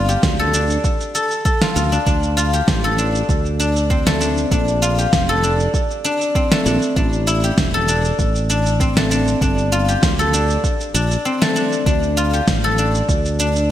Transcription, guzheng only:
Already playing: A3 C4 D4 F4 A4
0.09 G4
0.39 A4
0.54 D4
1.15 A4
1.45 A4
1.62 F4
1.76 F4
1.92 D4
2.06 D4
2.37 F4
2.53 G4
2.84 A4
2.98 D4
3.60 D4
3.90 C4
4.06 A3
4.21 D4
4.51 D4
4.82 F4
4.98 G4
5.29 A4
5.43 D4
6.04 D4
6.35 C4
6.52 A3
6.66 D4
6.96 D4
7.27 E4
7.44 G4
7.74 A4
7.88 D4
8.50 D4
8.81 C4
8.97 A3
9.11 D4
9.42 D4
9.72 F4
9.88 G4
10.19 A4
10.33 D4
10.94 D4
11.25 C4
11.42 A3
11.56 D4
11.86 D4
12.17 F4
12.33 G4
12.64 A4
12.78 D4
13.40 D4

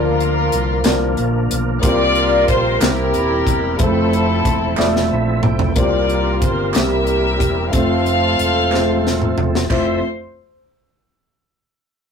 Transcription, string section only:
Already playing: F4 A#4
1.83 F4 A#4 D5
2.51 C5
2.83 E4 G4 A#4
3.80 C4 E4 A4
5.77 F4 A#4 D5
6.42 C5
6.73 G4 A#4 E5
7.71 A4 C5 F5
9.71 C5

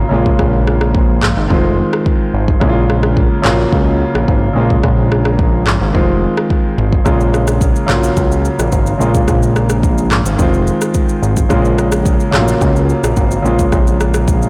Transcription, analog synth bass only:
0.11 A#1
0.39 A#1
1.37 G#1
1.50 F1
2.34 G#1
2.61 A#1
3.45 A#1
3.73 C#2
4.15 A#1
4.28 G#1
4.56 A#1
4.84 A#1
5.81 G#1
5.95 F1
6.78 G#1
7.06 A#1
7.89 A#1
8.17 C#2
8.59 A#1
8.72 G#1
9.00 A#1
9.28 A#1
10.26 G#1
10.39 F1
11.22 G#1
11.50 A#1
12.34 A#1
12.61 C#2
13.04 A#1
13.17 G#1
13.45 A#1
13.72 A#1

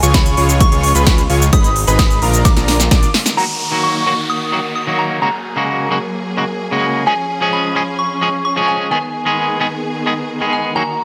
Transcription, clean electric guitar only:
3.37 D#3 F#3 A#3 F#4
3.71 D#3 F#3 A#3 F#4
4.06 D#3 F#3 A#3 F#4
4.52 D#3 F#3 A#3 F#4
4.87 D#3 F#3 A#3 F#4
5.21 C#3 G#3 A#3 F#4
5.56 C#3 G#3 A#3 F#4
5.90 C#3 G#3 A#3 F#4
6.37 C#3 G#3 A#3 F#4
6.71 C#3 G#3 A#3 F#4
7.06 F3 G#3 C#4 G#4
7.41 F3 G#3 C#4 G#4
7.75 F3 G#3 C#4 G#4
8.21 F3 G#3 C#4 G#4
8.56 F3 G#3 C#4 G#4
8.91 D#3 G#3 B3 G#4
9.25 D#3 G#3 B3 G#4
9.60 D#3 G#3 B3 G#4
10.06 D#3 G#3 B3 G#4
10.40 D#3 G#3 B3 G#4
10.75 D#3 F#3 A#3 F#4

